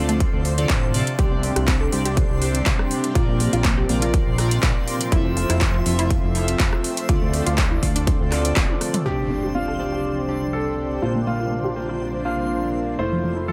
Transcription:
Already playing: D2 C3 D3 F3 A3 C4 D4 F4 A4 C5 D5 C6
0.09 A3, closed hi-hat
0.20 kick, closed hi-hat
0.33 D2
0.45 open hi-hat
0.58 D3 C4 F4 A4 D5, closed hi-hat
0.69 A1, kick, clap, closed hi-hat
0.94 C3 C4 F4 A4 D5, open hi-hat
1.07 closed hi-hat
1.19 C2 C3 D3 G3 C4 D4 G4 D5, kick, closed hi-hat
1.32 C4
1.43 C4, open hi-hat
1.56 C2 G4, cross-stick, closed hi-hat
1.68 C4, kick, clap, closed hi-hat
1.81 A4
1.92 C2 C3 C4 D4 G4 D5, open hi-hat
2.05 G4, closed hi-hat
2.17 kick, closed hi-hat
2.30 C2
2.42 C3 C4 D4 G4 D5, open hi-hat
2.55 closed hi-hat
2.66 C2, kick, clap, closed hi-hat
2.79 cross-stick
2.91 open hi-hat
3.04 closed hi-hat
3.15 A#1 A#2 F3 A#3 C4 F4 A#4 D5, kick, closed hi-hat
3.28 A#3
3.40 A#3, open hi-hat
3.53 A#1 F4, closed hi-hat
3.65 A#3, kick, clap, closed hi-hat
3.78 G4
3.89 A#1 A#2 A#3 C4 F4 A#4 D5, open hi-hat
4.02 F4, closed hi-hat
4.14 kick, closed hi-hat
4.27 A#1
4.38 A#2 C4 F4 A#4 D5, cross-stick, open hi-hat
4.51 closed hi-hat
4.63 A#1, kick, clap, closed hi-hat
4.88 open hi-hat
5.01 closed hi-hat
5.12 F1 F3 A3 C4 E4 F4 A4 E5, kick, closed hi-hat
5.25 F3
5.37 F3, open hi-hat
5.50 F1 E4, cross-stick, closed hi-hat
5.61 F3, kick, clap, closed hi-hat
5.74 F4
5.86 F1 F3 C4 F4 A4 E5, open hi-hat
5.99 E4, closed hi-hat
6.10 kick, closed hi-hat
6.23 F1
6.35 F3 C4 F4 A4 E5, open hi-hat
6.48 closed hi-hat
6.60 F1, kick, clap, closed hi-hat
6.73 cross-stick
6.84 open hi-hat
6.97 closed hi-hat
7.09 D2 C3 D3 F3 C4 D4 F4 D5, kick, closed hi-hat
7.22 A3
7.34 A3, open hi-hat
7.46 D2 F4, closed hi-hat
7.58 A3, kick, clap, closed hi-hat
7.71 E4
7.83 D2 D3 A3 C4 F4 A4 D5, kick, open hi-hat
7.96 D4, closed hi-hat
8.07 kick, closed hi-hat
8.20 D2
8.32 D3 C4 F4 A4 D5, cross-stick, clap, open hi-hat
8.45 closed hi-hat
8.56 D1, kick, clap, closed hi-hat, high tom
8.70 high tom
8.81 cross-stick, open hi-hat
8.94 closed hi-hat, mid tom
9.06 C2 C3 D3 G3 C4 D4 G4 C5 D5 C6, impact
9.19 C4
9.30 C4
9.43 G4
9.55 C4 F4
9.68 A4
9.79 C3 C4 D4 G4 D5
9.92 G4
10.28 C3 C4 D4 G4 D5
10.53 A4
11.02 A#1 A#2 F3 A#3 D4 F4 C5
11.15 A#3
11.27 A#3 F4
11.40 F4
11.52 A#3
11.64 G4
11.76 A#2 A#3 D4 F4 C5
11.89 F4
12.25 A#2 A#3 D4 F4 C5
12.99 F1 A3 E4 F4 C5 E5
13.12 F3
13.24 F3
13.37 E4
13.48 F3 A4

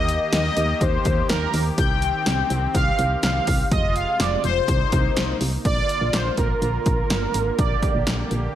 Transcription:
Already playing: D#2 D#3 A#3 G4 D#5
0.09 closed hi-hat
0.33 D#2 D#5, snare, closed hi-hat
0.57 D#2, closed hi-hat
0.81 D#2 C5, kick, closed hi-hat
1.05 D#2, kick, closed hi-hat
1.29 D#2 A#4, snare, closed hi-hat
1.54 D#2, open hi-hat
1.78 C2 C4 G5, kick, closed hi-hat
2.02 closed hi-hat
2.26 C2, snare, closed hi-hat
2.50 C2, closed hi-hat
2.75 C2 F5, kick, closed hi-hat
2.99 C2, closed hi-hat
3.23 C2 F5, snare, closed hi-hat
3.47 C2, kick, open hi-hat
3.71 F1 C3 G#3 F4 D#5, kick, closed hi-hat
3.96 F5, closed hi-hat
4.20 F1 D5, snare, closed hi-hat
4.44 F1 C5, closed hi-hat
4.68 C2 A#3 D#4, kick, closed hi-hat
4.92 C2, kick, closed hi-hat
5.17 C2, snare, closed hi-hat
5.41 C2, open hi-hat
5.65 A#1 D3 A#3 F4 D5, kick, closed hi-hat
5.89 closed hi-hat
6.01 A#1
6.13 A#1 C5, snare, closed hi-hat
6.37 A#1 A#4, kick, closed hi-hat
6.62 A#1 A#4, closed hi-hat
6.86 A#1, kick, closed hi-hat
7.10 G1, snare, closed hi-hat
7.34 G#1, closed hi-hat
7.59 A#1 G4 D5, kick, closed hi-hat
7.82 kick, closed hi-hat
7.95 A#1
8.07 A#1, snare, closed hi-hat
8.31 A#1, closed hi-hat

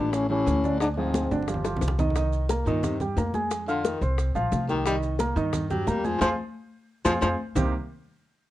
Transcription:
Already playing: A1 A#2 E3 D4 E4 G4
0.12 A2 C#4, high bongo, high conga, maracas
0.29 A2 E3 C#4 E4 G4, high conga
0.46 D2, high bongo, low bongo, high conga, maracas
0.64 D3 D4 D5, high bongo, high conga, maracas
0.80 G#2 D4, high bongo, high conga, maracas
0.97 G#2 F3 C4 F4 G#4, high bongo, high conga
1.14 high bongo, high conga, maracas
1.31 G1 D3 D4 D5, high bongo, high conga, maracas
1.43 high conga
1.48 F3 F4 G4, high bongo, maracas
1.54 low conga
1.65 F3 F4 G4, high bongo, maracas
1.77 low conga
1.81 C2, low bongo, maracas
1.88 low conga
1.99 D#3 D#4 D#5, low bongo, low conga, maracas
2.10 low conga
2.16 D#3 D#4 D#5, high bongo, high conga, maracas
2.32 high conga, maracas
2.49 A#3 A#4 A#5, high bongo, high conga, maracas
2.66 G2 A#2 D#3 D#4 D#5, high bongo, high conga, maracas
2.83 C3, high bongo, high conga, low conga, maracas
3.00 G3 G4 G5, high bongo, high conga, low conga, maracas
3.16 F2 A#3 A#4 A#5, high bongo, low bongo, high conga, maracas
3.34 G#3 G#4 G#5, high bongo, high conga, maracas
3.51 high bongo, high conga, maracas
3.68 D3 F4 F5 F6, high conga, maracas
3.85 D#3, high bongo, high conga, maracas
4.01 C2 C4 C5 C6, high bongo, high conga, maracas
4.18 high bongo, high conga, maracas
4.35 A#1 F3 F4 F5, high bongo, high conga, maracas
4.52 C2, high bongo, low bongo, high conga, maracas
4.69 D#3 G3 G4 G5, high bongo, high conga, maracas
4.86 D#3 G3 D#4 D#5, high bongo, high conga, maracas
5.03 high conga, maracas
5.19 A#3 A#4 A#5, high bongo, high conga, maracas
5.36 G2 D#3 D#4 D#5, high bongo, high conga, maracas
5.53 high bongo, high conga, low conga, maracas
5.70 F#3 G3 G4 G5, high bongo, high conga, low conga, maracas
5.87 F2 G3 A#3 A#4 A#5, high bongo, low bongo, high conga, maracas
6.04 F3 G#3 G#4 G#5, high bongo, high conga, maracas
6.21 F2 F3 F4 G#4 C5, low bongo, high conga, maracas
7.05 F2 F3 F4 G#4 C5, low bongo, high conga, maracas
7.21 F2 F3 F4 G#4 C5, low bongo, high conga, maracas
7.55 C2 C3 G3 A#3 C4 D#4 G4, low bongo, low conga, maracas

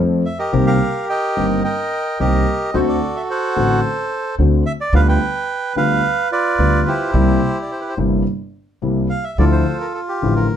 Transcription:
Already playing: F2 F3 A3 C4
0.00 A4
0.26 E5
0.39 G4 A#4 D#5
0.53 C2 C3 D#3 A#3 C4 G4
0.67 A#4 F5
1.09 A#4 D#5 G5
1.37 G1 G2 D#3 A#3 C4 G4
1.64 A#4 D#5 G5
2.20 C2 C3 D#3 A#3 C4 G4 A#4 D#5
2.74 D2 D3 A3 C4 F#4 A4 C5
2.88 D5
3.16 E5
3.30 A4 C5 F#5
3.56 A1 A2 D3 A3 C4 F#4
4.39 D2 D3 A3 C4 F#4
4.66 E5
4.81 D5
4.93 D2 D3 G3 B3 F4 B4 F5
5.09 B4 G5
5.75 D2 D3 G3 B3 F4 B4 F5
6.32 F4 B4 D5
6.59 D2 D3 G3 B3 F4
6.87 E4 G4 C5
7.14 C2 C3 G3 A#3 E4
7.62 D5
7.72 C5
7.80 B4
7.89 C5
7.97 G1 G2 C3 G3 A#3 E4
8.82 C2 C3 G3 A#3 E4
9.10 F5
9.24 E5
9.38 D2 D3 F3 A3 E4 F4 A4 D5
9.52 C5
9.80 A#4
9.94 A4
10.08 G4
10.22 A1 A2 D3 F3 A3 E4
10.36 A#4

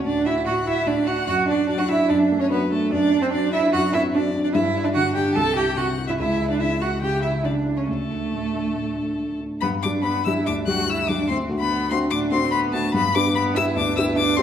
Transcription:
Already playing: D2 F#4
0.04 A2 D4 D5
0.25 E4 F#4 E5
0.45 A2 F#4 F#5
0.66 E4 F#4 E5
0.86 A2 D4 D5
1.06 F#4 F#5
1.26 F#2 F#4 F#5
1.48 D4 D5
1.68 F#3 D4 D5
1.78 F#4 F#5
1.88 D4 E4 E5
2.09 F#2 D4 D5
2.32 A3
2.40 C#4 C#5
2.51 F#3 B3 B4
2.71 A3 D4 A4
2.91 F#2 D4 D5
3.13 D4
3.21 C4 C5
3.30 F#3 D4 D5
3.52 D4 E4 E5
3.73 F#2 F#4 F#5
3.93 C4 E4 E5
4.14 F#3 D4 D5
4.34 D4
4.44 D4 D5
4.53 G2 E4 E5
4.76 D4
4.84 D4 D5
4.94 D3 F#4 F#5
5.14 D4 G4 G5
5.35 C2 A4 A5
5.56 E4 G4 G5
5.77 C3 F#4 F#5
5.98 E4
6.07 E4 E5
6.18 C#2 E4 E5
6.40 E4
6.50 D4 D5
6.59 C#3 E4 E5
6.81 E4 F#4 F#5
7.02 C#3 G4 G5
7.22 E4 E5
7.44 C#3 D4 D5
7.66 E4
7.77 C#4 C#5
7.88 D2 A3 A4
8.09 D4
8.31 A2
8.53 D4
8.75 A2
8.97 D4
9.19 A2
9.41 D4
9.61 G2 B3 B5
9.82 G3 D4 G4 D6
10.03 B3 B5
10.25 G3 D4 E4 G4 E6
10.46 D2 D4 D6
10.67 G3 D4 F#4 G4 F#6
10.89 E4 E6
11.08 G3 D4 G4 D6
11.28 D2 C4 C6
11.49 A3 D4 F#4
11.59 B3 B5
11.90 A3 C4 D4 F#4 C6
12.10 A2 D4 D6
12.31 A3 C4 D4 F#4 C6
12.51 B3 B5
12.73 A3 D4 F#4 A5
12.93 G2 B3 B5
13.15 B3 D4 G4 D6
13.35 B3 B5
13.55 B3 D4 E4 G4 E6
13.76 D2 D4 D6
13.96 B3 D4 E4 G4 E6
14.16 D4 D6
14.37 B3 C4 D4 G4 C6

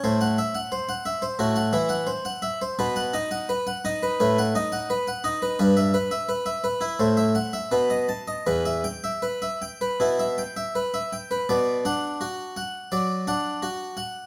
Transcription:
0.04 A2 C5
0.21 F#5
0.38 E5
0.55 F#5
0.72 C5
0.89 F#5
1.06 E5
1.22 C5
1.39 A2 F#4
1.56 F#5
1.73 E3 E5
1.89 F#5
2.07 C5
2.25 F#5
2.42 E5
2.62 C5
2.79 B2 B4
2.96 F#5
3.13 D#4 D#5
3.31 F#5
3.49 B4
3.67 F#5
3.85 D#4 D#5
4.03 B4
4.20 A2 B4
4.38 F#5
4.55 D#4 D#5
4.72 F#5
4.90 B4
5.08 F#5
5.24 D#4 D#5
5.42 B4
5.59 G2 B4
5.77 E5
5.94 B4
6.11 E5
6.29 B4
6.46 E5
6.64 B4
6.81 E4
6.99 A2 C5
7.17 E5
7.35 F#5
7.53 E5
7.71 B2 B4
7.90 D#5
8.09 A5
8.28 D#5
8.47 E2 B4
8.66 E5
8.84 G5
9.04 E5
9.22 B4
9.42 E5
9.62 G5
9.81 B4
10.00 B2 E4
10.19 E5
10.38 G5
10.57 E5
10.75 B4
10.94 E5
11.13 G5
11.31 B4
11.49 B2 D5
11.85 D4 F#5
12.21 F#4
12.57 F#5
12.92 F#3 D5
13.27 D4 F#5
13.62 F#4
13.97 F#5

